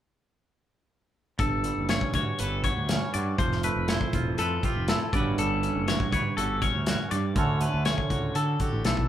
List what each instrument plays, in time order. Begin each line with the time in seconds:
1.39 fingered electric bass G1, clean electric guitar G2 A4, kick, closed hi-hat
1.64 clean electric guitar G3, closed hi-hat
1.78 fingered electric bass F#1
1.89 clean electric guitar C#4 C#5, snare, closed hi-hat
2.01 kick
2.14 fingered electric bass D2, clean electric guitar F#4 C#5, kick, closed hi-hat
2.39 fingered electric bass G1, clean electric guitar A4 B4, closed hi-hat
2.64 clean electric guitar F#4 C#5, kick, closed hi-hat
2.77 fingered electric bass D2
2.89 clean electric guitar C#4, snare, closed hi-hat
3.14 fingered electric bass G2, clean electric guitar F#4 D5, closed hi-hat
3.38 fingered electric bass F1, clean electric guitar F3 C5, kick, closed hi-hat
3.52 snare
3.63 clean electric guitar A3 B4, closed hi-hat
3.76 fingered electric bass F1
3.88 clean electric guitar E4 C5, snare, closed hi-hat
4.01 kick
4.13 fingered electric bass E1, clean electric guitar F4, kick, closed hi-hat
4.38 fingered electric bass F2, clean electric guitar A4 B4, closed hi-hat
4.63 clean electric guitar F4 G4, kick, closed hi-hat
4.76 fingered electric bass F1
4.88 clean electric guitar E4 A4, snare, closed hi-hat
5.13 fingered electric bass G1, clean electric guitar G2 G3 C#4 F#4 B4 D5, kick, closed hi-hat
5.38 fingered electric bass G1, clean electric guitar G3 A4, closed hi-hat
5.63 clean electric guitar C#4, closed hi-hat
5.75 fingered electric bass F#1
5.88 clean electric guitar F#4 C#5, snare, closed hi-hat
6.00 kick
6.12 fingered electric bass D2, clean electric guitar B4 C#5, kick, closed hi-hat
6.37 fingered electric bass G1, clean electric guitar F#4 A4, closed hi-hat
6.62 clean electric guitar C#4 C#5, kick, closed hi-hat
6.75 fingered electric bass D2
6.86 clean electric guitar F#4, snare, closed hi-hat
7.11 fingered electric bass G2, clean electric guitar G2 D5, closed hi-hat
7.36 fingered electric bass D2, clean electric guitar D3 A3 C#4 F#4 A4 C#5, kick, closed hi-hat
7.61 clean electric guitar A3 B4, closed hi-hat
7.74 fingered electric bass D2
7.85 clean electric guitar C#4 C#5, snare, closed hi-hat
7.98 kick
8.10 fingered electric bass C#2, clean electric guitar F#4, kick, closed hi-hat
8.35 fingered electric bass D3, clean electric guitar A4, closed hi-hat
8.60 clean electric guitar F#4 G4, kick, closed hi-hat
8.73 fingered electric bass A1
8.84 fingered electric bass B1, clean electric guitar E3 A4, snare, closed hi-hat
8.97 kick